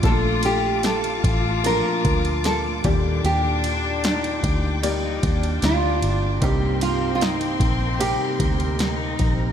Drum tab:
RD |x-x-xxx-x-xxx-x-|x-x-xxx-x-xxx-x-|x-x-xxx-x-xxx-x-|
SD |----o-------o---|----o-------o---|----o-------o---|
BD |o-----o---o---o-|------o---o-----|o-----o---o---o-|